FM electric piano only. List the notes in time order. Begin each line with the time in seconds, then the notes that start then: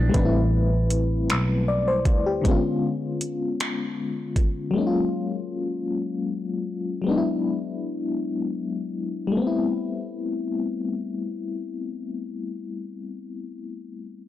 Already playing: B3 D4 E4
0.09 G3 A3
0.14 C4 B4
0.19 D4
0.25 E4
1.68 D5
1.88 C5
2.26 G4
2.41 D3 G#3
2.46 B3 C#4
2.51 F4
4.71 F#3 G#3
4.76 A#3 C#4
4.81 D#4
4.87 F4
7.02 F#3 G#3
7.07 B3 D4
7.11 D#4
7.18 E4
9.27 G3
9.32 A3
9.37 B3
9.42 C4
9.47 E4